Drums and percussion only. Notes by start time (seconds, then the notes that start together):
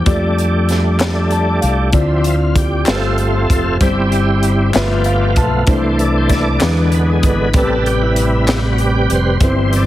0.06 kick, closed hi-hat
0.38 closed hi-hat
0.69 snare, closed hi-hat
1.00 snare, clap, closed hi-hat
1.31 closed hi-hat
1.62 closed hi-hat
1.93 kick, closed hi-hat
2.24 closed hi-hat
2.56 kick, closed hi-hat
2.86 snare, clap, closed hi-hat
3.18 closed hi-hat
3.50 kick, closed hi-hat
3.81 kick, closed hi-hat
4.12 closed hi-hat
4.43 closed hi-hat
4.74 snare, clap, closed hi-hat
5.04 closed hi-hat
5.36 kick, closed hi-hat
5.67 kick, closed hi-hat
5.99 closed hi-hat
6.29 kick, snare, closed hi-hat
6.61 snare, clap, closed hi-hat
6.92 closed hi-hat
7.23 kick, closed hi-hat
7.54 kick, closed hi-hat
7.86 closed hi-hat
8.16 closed hi-hat
8.48 snare, clap, closed hi-hat
8.78 closed hi-hat
9.10 closed hi-hat
9.40 kick, closed hi-hat
9.73 closed hi-hat